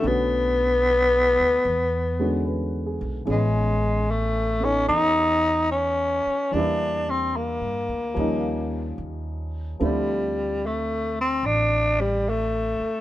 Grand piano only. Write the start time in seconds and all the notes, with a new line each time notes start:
Already playing: D3
0.00 A3 B3
0.05 C#4 F#4
2.19 D3 G#3 B3 C#4 F#4
2.45 B4
2.86 G#4
3.25 E3 B3 C#4 G#4
4.60 B3 C#4 D#4 A4
6.51 E3 G3 A#3 D4
6.57 E4
8.14 F3 G3 A#3
8.18 C#4 D#4
9.79 F3 A3 C4 D4 E4